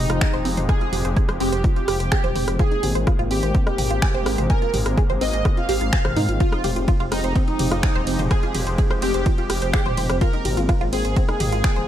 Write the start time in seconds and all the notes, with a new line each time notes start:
Already playing: F3 G#3 C4 D#4 G4
0.10 F1 F4, cross-stick, closed hi-hat
0.21 G#4, finger snap, kick, closed hi-hat
0.33 D#1 C5, closed hi-hat
0.45 F1 C4, open hi-hat
0.57 F1 C5, closed hi-hat, mid tom
0.69 G#4 G#5, kick, cross-stick, closed hi-hat
0.81 F4, closed hi-hat
0.93 F1 G4, mid tom, open hi-hat
1.05 F1 C5, closed hi-hat
1.17 G#4, kick, closed hi-hat
1.29 F1 C5, cross-stick, closed hi-hat
1.40 F1 C4 G4, open hi-hat
1.52 F1 C5, closed hi-hat
1.64 F4, kick, closed hi-hat
1.76 F4 G4, closed hi-hat
1.88 F1 G4, cross-stick, open hi-hat
2.00 F1 C5, closed hi-hat
2.12 G#4, finger snap, kick, closed hi-hat
2.24 D#1 C5, closed hi-hat, mid tom
2.35 F1 C5, mid tom, open hi-hat
2.48 F1 C5, cross-stick, closed hi-hat
2.59 G#3 A#3 F4 G#4, kick, closed hi-hat
2.71 D#4, closed hi-hat
2.83 G#1 G4, mid tom, open hi-hat
2.95 G#1 C5, closed hi-hat
3.07 F4, kick, cross-stick, closed hi-hat
3.19 G#1 F4, closed hi-hat
3.31 G#1 C4 G4, open hi-hat
3.43 G#1 C5, closed hi-hat
3.54 C4, kick, closed hi-hat
3.67 D#4 G4, cross-stick, closed hi-hat
3.78 G#1 G4, mid tom, open hi-hat
3.91 G#1 F4, closed hi-hat
4.02 G#4, finger snap, kick, closed hi-hat
4.14 D#1 C5, closed hi-hat
4.26 G#1 C4, cross-stick, open hi-hat
4.38 G#1 C5, closed hi-hat, mid tom
4.50 A#4 G#5, kick, closed hi-hat
4.62 F4, closed hi-hat
4.74 G#1 G4, mid tom, open hi-hat
4.86 G#1 C5, cross-stick, closed hi-hat
4.98 G#4, kick, closed hi-hat
5.10 G#1 C5, closed hi-hat
5.21 G#1 C4 D#5, open hi-hat
5.33 G#1 C5, closed hi-hat
5.45 F4, kick, cross-stick, closed hi-hat
5.57 F4 F5, closed hi-hat
5.69 G#1 G4, open hi-hat
5.81 G#1 F4, closed hi-hat
5.93 G#5, finger snap, kick, closed hi-hat
6.05 G#1 C5, cross-stick, closed hi-hat, mid tom
6.16 G#2 D#4, mid tom, open hi-hat
6.29 G#1 F4, closed hi-hat
6.40 F3 G#3 F4 G4, kick, closed hi-hat, ride
6.52 D#4, cross-stick, closed hi-hat
6.64 F1 G4, mid tom, open hi-hat, ride
6.76 F1 F4, closed hi-hat
6.88 F4, kick, closed hi-hat, ride
7.00 F1 F4, closed hi-hat
7.12 F1 C4 D#4, cross-stick, open hi-hat, ride
7.24 F1 C5, closed hi-hat
7.36 C4, kick, closed hi-hat, ride
7.48 D#4, closed hi-hat
7.59 F1 G4, mid tom, open hi-hat, ride
7.71 F1 F4, cross-stick, closed hi-hat
7.83 G#4, finger snap, kick, closed hi-hat, ride
7.95 D#1 C5, closed hi-hat
8.07 F1 C4, open hi-hat, ride
8.19 F1 C5, closed hi-hat, mid tom
8.31 G#4 G#5, kick, cross-stick, closed hi-hat, ride
8.43 F4, closed hi-hat
8.55 F1 G4, mid tom, open hi-hat, ride
8.67 F1 C5, closed hi-hat
8.78 G#4, kick, closed hi-hat, ride
8.90 F1 C5, cross-stick, closed hi-hat
9.02 F1 C4 G4, open hi-hat, ride
9.14 F1 C5, closed hi-hat
9.26 F4, kick, closed hi-hat, ride
9.38 F4 G4, closed hi-hat
9.50 F1 G4, cross-stick, open hi-hat, ride
9.62 F1 C5, closed hi-hat
9.74 G#4, finger snap, kick, closed hi-hat, ride
9.86 D#1 C5, closed hi-hat, mid tom
9.97 F1 C5, mid tom, open hi-hat, ride
10.10 F1 C5, cross-stick, closed hi-hat
10.21 G#3 A#3 C4 F4 A#4, kick, closed hi-hat, ride
10.33 D#4, closed hi-hat
10.45 G#1 G4, mid tom, open hi-hat, ride
10.57 G#1 F4, closed hi-hat
10.69 F4, kick, cross-stick, closed hi-hat, ride
10.81 G#1 F4, closed hi-hat
10.93 G#1 C4 G#4, open hi-hat, ride
11.05 G#1 C5, closed hi-hat
11.16 C4, kick, closed hi-hat, ride
11.29 D#4 G#4, cross-stick, closed hi-hat
11.40 G#1 G4, mid tom, open hi-hat, ride
11.52 G#1 F4, closed hi-hat
11.64 G#4, finger snap, kick, closed hi-hat, ride
11.76 D#1 C5, closed hi-hat